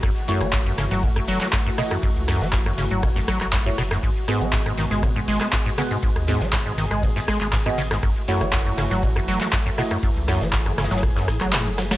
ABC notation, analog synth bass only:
X:1
M:4/4
L:1/16
Q:1/4=120
K:F#dor
V:1 name="Analog synth bass" clef=bass
F,,, z2 F,,,4 F,,,3 F,,, z4 z | z C,,2 F,,,4 F,,,3 z F,,,4- F,,, | G,,, z2 G,,,4 G,,,3 G,,, z4 z | z D,,2 G,,,4 G,,,3 z G,,,4- G,,, |
F,,, z2 F,,,4 F,,,3 F,,, z4 z | z C,,2 F,,,4 F,,,3 z F,,,4- F,,, |]